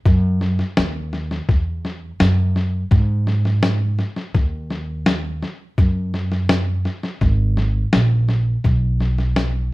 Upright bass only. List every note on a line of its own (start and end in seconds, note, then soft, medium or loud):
0.06 0.59 F#2 medium
0.78 1.39 D#2 medium
1.49 2.10 E2 medium
2.21 2.81 F#2 medium
2.92 3.99 G#2 loud
4.35 5.42 D#2 medium
5.78 6.85 F#2 medium
7.22 7.83 G#1 medium
7.94 8.55 A#1 medium
8.65 9.72 B1 medium